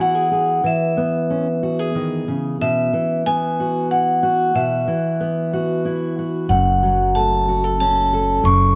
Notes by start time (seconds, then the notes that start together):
Already playing: E3 B3 E4
0.00 F#4 F#5
0.15 G#4
0.31 G#4
0.64 E3 E5
0.97 B3
1.30 C#4
1.63 F#4
1.79 G#4
1.95 D#3
2.28 C#3
2.61 B2 E5
2.93 E3
3.26 B3 G#5
3.60 F#4
3.91 E4 F#5
4.23 F#4
4.55 B2 E5
4.88 E3
5.20 B3
5.53 F#4
5.85 E4
6.19 F#4
6.49 F#1 F#2 F#5
6.83 F#3
7.15 A3 A5
7.49 F#4
7.64 A4
7.80 C#4 A5
8.13 A4
8.44 F#1 F#2 C#6